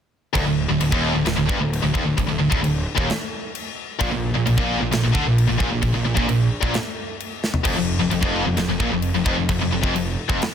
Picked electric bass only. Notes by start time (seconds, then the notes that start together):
0.36 D1
0.45 D1
0.69 D1
0.81 D1
0.92 D#1
1.15 D1
1.26 D1
1.37 D1
1.49 G1
1.61 D1
1.83 D1
1.95 D#1
2.06 D1
2.18 D1
2.31 D1
2.43 D1
2.52 D1
2.66 D1
2.97 D#1
4.01 A#1
4.13 A#1
4.36 A#1
4.47 A#1
4.58 A#1
4.82 A#1
4.94 A#1
5.04 A#1
5.15 D2
5.27 A#1
5.50 A#1
5.60 A#1
5.72 A#1
5.83 A#1
5.95 A#1
6.06 A#1
6.17 A#1
6.31 A#1
6.62 A#1
7.65 F1
7.77 F1
7.99 F1
8.12 F1
8.22 F1
8.46 F1
8.56 F1
8.68 F1
8.80 A#1
8.92 F1
9.13 F1
9.26 F1
9.38 F1
9.49 F1
9.61 F1
9.73 F1
9.83 F1
9.94 F1
10.29 F1